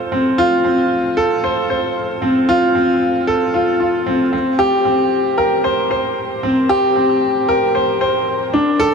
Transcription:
0.00 0.12 C4 medium
0.00 0.38 F4 medium
0.00 1.17 A4 medium
0.00 1.44 C5 medium
0.12 0.37 C4 medium
0.38 0.63 F4 loud
0.64 0.89 C4 medium
1.17 1.42 A4 medium
1.44 1.68 C5 medium
1.70 1.95 C5 medium
2.22 2.47 C4 medium
2.49 2.74 F4 loud
2.75 3.00 C4 medium
3.27 3.52 A4 medium
3.54 3.69 F4 medium
3.80 4.05 F4 medium
4.06 4.21 C4 medium
4.33 4.58 C4 medium
4.59 4.84 G4 loud
4.85 5.10 C4 medium
5.38 5.63 A#4 medium
5.64 5.89 C5 medium
5.91 6.16 C5 medium
6.43 6.68 C4 medium
6.69 6.95 G4 loud
6.96 7.21 C4 medium
7.49 7.74 A#4 medium
7.75 8.00 C5 medium
8.01 8.26 C5 medium
8.53 8.79 D4 medium
8.80 8.94 A4 loud

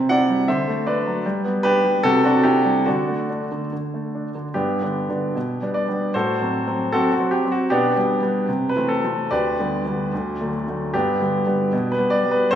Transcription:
0.00 0.46 C3 medium
0.00 0.21 C4 soft
0.09 0.40 E4 soft
0.09 0.46 D5 medium
0.09 0.48 F#5 medium
0.30 0.48 G3 soft
0.48 1.23 D3 medium
0.48 0.84 C5 medium
0.48 0.86 E5 medium
0.68 0.98 A3 soft
0.87 1.17 D4 soft
0.87 1.23 B4 medium
0.87 1.25 D5 medium
1.06 1.25 F#3 soft
1.26 1.83 G3 medium
1.44 1.76 B3 medium
1.63 1.96 D4 medium
1.63 2.01 G4 medium
1.63 2.03 B4 loud
1.84 2.04 G3 soft
2.03 2.85 C3 medium
2.03 2.23 F#4 medium
2.03 2.24 A4 medium
2.24 2.57 C4 soft
2.24 2.44 D4 medium
2.24 2.45 F#4 medium
2.43 2.84 E4 medium
2.43 2.86 G4 medium
2.65 2.87 G3 soft
2.86 3.50 D3 soft
2.86 3.28 D4 soft
2.86 3.71 F#4 medium
3.08 3.42 A3 soft
3.30 3.64 D4 soft
3.52 3.71 D3 soft
3.73 4.34 D3 soft
3.94 4.27 A3 soft
4.15 4.47 D4 soft
4.35 4.55 D3 soft
4.54 4.81 G2 soft
4.54 4.82 B3 soft
4.54 4.82 D4 soft
4.54 5.75 G4 medium
4.82 5.06 D3 soft
4.82 5.07 B3 soft
4.82 5.07 D4 soft
5.09 5.33 D3 soft
5.09 5.33 B3 soft
5.09 5.33 D4 soft
5.35 5.61 B2 soft
5.62 5.86 G3 soft
5.62 5.86 B3 soft
5.62 5.86 D4 soft
5.74 6.14 D5 medium
5.88 6.12 G3 soft
5.88 6.12 B3 soft
5.88 6.12 D4 soft
6.14 6.40 A2 medium
6.14 6.88 F#4 medium
6.14 6.89 A4 medium
6.14 6.92 C5 medium
6.41 6.64 F#3 soft
6.41 6.64 C4 soft
6.67 6.90 F#3 soft
6.67 6.90 C4 soft
6.92 7.16 F#3 soft
6.92 7.11 C4 medium
6.92 7.11 F#4 medium
6.92 7.12 A4 medium
7.12 7.31 F#4 medium
7.19 7.42 F#3 soft
7.19 7.42 C4 soft
7.31 7.50 G4 medium
7.45 7.68 F#3 soft
7.45 7.68 C4 soft
7.52 7.70 F#4 medium
7.70 7.95 B2 medium
7.70 7.96 B3 medium
7.70 7.96 D4 medium
7.70 8.68 G4 medium
7.97 8.20 G3 soft
7.97 8.20 B3 soft
7.97 8.20 D4 soft
8.23 8.46 G3 soft
8.23 8.46 B3 soft
8.23 8.46 D4 soft
8.49 8.74 C3 medium
8.69 8.89 B4 medium
8.76 9.01 E3 soft
8.76 9.01 A3 soft
8.76 9.01 C4 soft
8.89 9.30 A4 medium
9.04 9.28 E3 soft
9.04 9.28 A3 soft
9.04 9.29 C4 soft
9.31 9.57 D2 soft
9.31 10.50 G4 medium
9.31 10.50 B4 medium
9.31 10.53 D5 medium
9.59 9.83 D3 soft
9.59 9.83 G3 soft
9.59 9.84 B3 soft
9.86 10.10 D3 soft
9.86 10.11 G3 soft
9.86 10.11 B3 soft
10.14 10.40 D2 soft
10.41 10.65 D3 soft
10.41 10.65 F#3 soft
10.41 10.65 A3 soft
10.68 10.91 D3 soft
10.68 10.92 F#3 soft
10.68 10.92 A3 soft
10.94 11.20 G2 soft
10.94 11.19 B3 medium
10.94 11.89 D4 medium
10.94 11.93 G4 medium
11.20 11.44 D3 soft
11.20 11.44 G3 soft
11.20 11.44 B3 soft
11.47 11.70 D3 soft
11.47 11.70 G3 soft
11.47 11.71 B3 soft
11.73 11.98 B2 medium
11.92 12.12 B4 medium
11.98 12.23 G3 soft
11.98 12.22 B3 soft
12.10 12.31 D5 medium
12.25 12.49 G3 soft
12.25 12.49 B3 soft
12.31 12.51 B4 medium
12.51 12.55 A2 medium
12.51 12.55 C5 loud

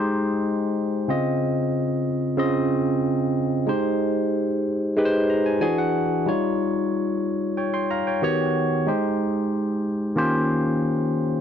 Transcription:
0.00 1.11 G#3 medium
0.00 1.11 D#4 medium
0.00 1.11 G4 medium
0.00 1.11 C5 loud
1.08 2.07 C#3 medium
1.08 2.08 C4 medium
1.08 2.08 F4 medium
1.08 2.09 D#5 medium
2.37 3.37 C#3 medium
2.37 3.37 C4 medium
2.37 3.38 F4 medium
2.37 3.38 D#5 medium
3.67 4.66 G#3 medium
3.67 4.67 D#4 medium
3.67 4.67 G4 medium
3.67 4.68 C5 medium
4.96 5.62 G#3 medium
4.96 5.62 D#4 medium
4.96 5.63 G4 medium
4.96 5.05 B4 medium
5.05 5.67 C5 loud
5.30 5.45 A#5 medium
5.46 5.60 G#5 medium
5.61 6.14 E3 medium
5.61 6.14 D4 medium
5.61 6.14 F#4 medium
5.61 6.15 G#4 loud
5.61 5.77 G#5 medium
5.78 6.24 F#5 medium
6.26 7.26 G3 medium
6.26 7.26 D#4 medium
6.26 7.27 F4 medium
6.26 7.27 C#5 medium
7.57 7.73 C#5 medium
7.57 7.73 G5 medium
7.74 7.89 G5 medium
7.74 7.89 C6 medium
7.91 8.06 F5 medium
7.91 8.06 A#5 medium
8.07 8.23 C#5 medium
8.07 8.37 G5 medium
8.22 8.74 D#3 medium
8.22 8.74 B3 medium
8.22 8.74 F#4 medium
8.22 8.75 G4 medium
8.22 8.75 C#5 loud
8.87 9.86 G#3 medium
8.87 9.86 D#4 medium
8.87 9.87 G4 medium
8.87 9.87 C5 medium
10.16 11.15 D#3 medium
10.16 11.15 A#3 medium
10.16 11.16 C#4 medium
10.16 11.16 F4 medium
10.16 11.16 G4 medium
10.16 11.17 C5 loud

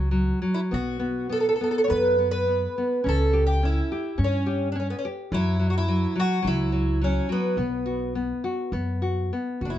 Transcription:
0.00 0.31 C#2 medium
0.00 0.10 F#3 soft
0.11 0.41 F#3 soft
0.42 0.71 F#3 soft
0.54 0.59 E4 medium
0.71 1.49 B1 medium
0.71 0.98 B3 medium
0.71 1.32 F#4 medium
0.99 1.28 B3 soft
1.30 1.58 B3 soft
1.30 1.39 A4 medium
1.40 1.47 A4 medium
1.49 1.54 A4 medium
1.56 1.62 A4 medium
1.61 1.87 B3 medium
1.61 1.70 A4 medium
1.71 1.77 A4 medium
1.78 1.84 A4 medium
1.84 1.89 C#5 medium
1.88 2.66 F#2 medium
1.88 2.17 B3 medium
1.88 2.30 B4 medium
2.19 2.46 B3 soft
2.31 3.08 B4 medium
2.47 2.76 B3 soft
2.78 3.03 B3 soft
3.04 3.80 C#2 medium
3.04 3.62 C#4 medium
3.09 3.46 A4 medium
3.33 3.61 G4 medium
3.47 3.64 G4 medium
3.63 3.90 C#4 soft
3.63 4.16 E4 medium
3.92 4.19 G4 soft
4.18 4.92 G2 medium
4.18 4.46 C#4 medium
4.24 4.68 C#4 medium
4.46 4.74 G4 soft
4.72 5.03 C#4 medium
4.72 4.79 D4 medium
4.80 4.87 C#4 medium
4.90 4.97 B3 medium
4.99 5.05 C#4 medium
5.05 5.31 G4 medium
5.32 6.05 F#2 medium
5.32 5.58 F#3 medium
5.32 5.69 E4 medium
5.59 5.87 F#3 medium
5.70 5.75 F#4 medium
5.78 6.19 E4 medium
5.88 6.14 F#3 soft
6.16 6.41 F#3 medium
6.20 6.47 F#4 loud
6.42 7.18 C#2 medium
6.42 6.71 F#3 medium
6.47 7.04 E4 medium
6.72 7.00 F#3 soft
7.02 7.28 F#3 soft
7.02 7.29 C#4 medium
7.29 7.56 F#3 soft
7.29 9.28 B3 medium
7.57 8.31 B1 medium
7.57 8.14 B3 medium
7.86 8.13 F#4 soft
8.15 8.42 B3 soft
8.44 8.71 F#4 soft
8.72 9.30 F#2 medium
8.72 9.00 B3 medium
9.02 9.30 F#4 soft
9.33 9.61 B3 soft
9.61 9.74 F#1 medium
9.61 9.79 F#4 soft
9.65 9.70 D4 medium
9.70 9.76 E4 soft

